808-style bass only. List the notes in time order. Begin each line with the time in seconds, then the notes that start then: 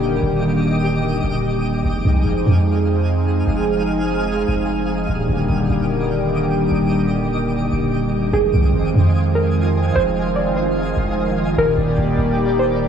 Already playing: D#1
0.22 D#1
1.24 D#1
1.85 F1
2.05 C2
2.25 F1
2.45 F2
3.47 F1
4.48 F1
5.09 D#1
5.29 D#1
5.50 D#1
5.70 D#1
6.71 D#1
7.72 D#1
8.33 F1
8.54 C2
8.74 F1
8.94 F2
9.95 F1
10.97 F1
11.58 D#1
11.78 D#1
11.98 D#1
12.18 D#1